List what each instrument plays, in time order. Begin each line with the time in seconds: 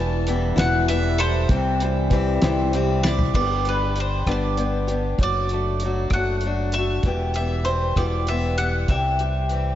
Already playing: fingered electric bass E1, clean electric guitar E2, steel-string acoustic guitar E3 G3 B3 E4, mandolin A5
0.27 steel-string acoustic guitar E3 G3 B3 E4, closed hi-hat
0.56 fingered electric bass E1, steel-string acoustic guitar E2 B2 E3 G3 B3 E4, mandolin F#5, snare, closed hi-hat
0.88 steel-string acoustic guitar E3 G3 B3 E4, mandolin E5, closed hi-hat
1.18 steel-string acoustic guitar E4, mandolin A4 C5, closed hi-hat
1.23 steel-string acoustic guitar E3 G3
1.49 fingered electric bass C2, steel-string acoustic guitar C3 E3 G3 C4 E4, kick, closed hi-hat
1.80 clean electric guitar E3, steel-string acoustic guitar G3 C4 E4, closed hi-hat
2.10 steel-string acoustic guitar E3 G3 C4, kick, closed hi-hat
2.14 steel-string acoustic guitar E4
2.42 fingered electric bass C2, steel-string acoustic guitar C3 E3 G3 C4 E4, snare, closed hi-hat
2.73 steel-string acoustic guitar E3 G3 C4 E4, closed hi-hat
3.03 steel-string acoustic guitar C4 E4, mandolin D5, snare
3.08 steel-string acoustic guitar G3
3.19 floor tom
3.34 fingered electric bass G1, steel-string acoustic guitar G2 D3 G3 B3 D4 G4, mandolin D5, kick, crash
3.65 steel-string acoustic guitar G3 B3 D4 G4, mandolin B4, closed hi-hat
3.96 steel-string acoustic guitar G3 D4 G4, closed hi-hat
4.00 mandolin C5
4.27 fingered electric bass G1, steel-string acoustic guitar G2 D3 G3 B3 D4 G4, kick, cross-stick, closed hi-hat
4.31 mandolin D5
4.57 steel-string acoustic guitar G3 B3 D4 G4, closed hi-hat
4.87 steel-string acoustic guitar G3 B3 D4 G4, closed hi-hat
5.18 fingered electric bass F#1, steel-string acoustic guitar F#3 A3 D4 F#4, kick, closed hi-hat
5.23 mandolin D5
5.49 steel-string acoustic guitar D4 F#4, closed hi-hat
5.54 steel-string acoustic guitar A3
5.80 steel-string acoustic guitar F#3, closed hi-hat
5.85 steel-string acoustic guitar A3 D4 F#4
6.10 fingered electric bass F#1, steel-string acoustic guitar F#4, mandolin F#5, kick, cross-stick, closed hi-hat
6.14 steel-string acoustic guitar F#3 A3 D4
6.41 steel-string acoustic guitar F#3, closed hi-hat
6.45 steel-string acoustic guitar A3 D4 F#4
6.72 mandolin E5, closed hi-hat
6.78 steel-string acoustic guitar A3 D4 F#4
7.03 fingered electric bass E1, steel-string acoustic guitar E2 B2 E3, kick, closed hi-hat
7.07 steel-string acoustic guitar G3 B3 G4
7.34 steel-string acoustic guitar G4, mandolin E5, closed hi-hat
7.38 steel-string acoustic guitar E3 G3 B3
7.64 steel-string acoustic guitar E3 G3 G4, mandolin C5, closed hi-hat
7.96 fingered electric bass E1, steel-string acoustic guitar E2 B2 E3 G3 B3 G4, mandolin D5, kick, cross-stick, closed hi-hat
8.27 steel-string acoustic guitar E3 G3 B3 G4, mandolin E5, closed hi-hat
8.57 steel-string acoustic guitar E3 G3 B3 G4, mandolin F#5, closed hi-hat
8.88 fingered electric bass C2, steel-string acoustic guitar C3 E3 G3 C4 G4, mandolin E5, kick, closed hi-hat
9.19 steel-string acoustic guitar C4 G4, closed hi-hat
9.24 steel-string acoustic guitar G3
9.49 steel-string acoustic guitar E3 G3, closed hi-hat
9.54 steel-string acoustic guitar C4 G4